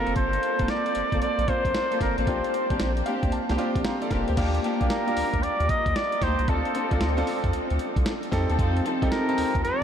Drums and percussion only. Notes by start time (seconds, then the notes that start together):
0.07 closed hi-hat
0.16 kick, closed hi-hat
0.33 closed hi-hat
0.43 closed hi-hat
0.59 kick, closed hi-hat
0.68 snare, closed hi-hat
0.86 closed hi-hat
0.95 closed hi-hat
1.12 kick, closed hi-hat
1.22 closed hi-hat
1.39 closed hi-hat
1.48 kick, closed hi-hat
1.65 kick, closed hi-hat
1.75 snare, closed hi-hat
1.92 closed hi-hat
2.01 kick, snare, closed hi-hat
2.18 closed hi-hat
2.27 kick, closed hi-hat
2.44 closed hi-hat
2.54 closed hi-hat
2.70 kick, closed hi-hat
2.80 snare, closed hi-hat
2.97 closed hi-hat
3.06 closed hi-hat
3.23 kick, closed hi-hat
3.32 closed hi-hat
3.49 snare, closed hi-hat
3.59 closed hi-hat
3.76 kick, closed hi-hat
3.85 snare, closed hi-hat
4.02 closed hi-hat
4.11 kick, snare, closed hi-hat
4.28 closed hi-hat
4.37 kick, closed hi-hat, crash
4.55 closed hi-hat
4.64 closed hi-hat
4.81 kick, closed hi-hat
4.90 snare, closed hi-hat
5.08 closed hi-hat
5.17 open hi-hat
5.34 kick, closed hi-hat
5.43 closed hi-hat
5.60 closed hi-hat
5.69 kick, closed hi-hat
5.86 kick, closed hi-hat
5.96 snare, closed hi-hat
6.12 closed hi-hat
6.22 kick, snare, closed hi-hat
6.39 closed hi-hat
6.48 kick, closed hi-hat
6.65 closed hi-hat
6.75 closed hi-hat
6.91 kick, closed hi-hat
7.01 snare, closed hi-hat
7.18 closed hi-hat
7.27 open hi-hat
7.44 kick, closed hi-hat
7.53 closed hi-hat
7.70 closed hi-hat
7.79 closed hi-hat
7.96 kick, closed hi-hat
8.06 snare, closed hi-hat
8.23 closed hi-hat
8.32 kick, snare, closed hi-hat
8.50 closed hi-hat
8.59 kick, closed hi-hat
8.77 closed hi-hat
8.86 closed hi-hat
9.02 kick, closed hi-hat
9.12 snare, closed hi-hat
9.29 closed hi-hat
9.38 open hi-hat
9.55 kick, closed hi-hat
9.65 closed hi-hat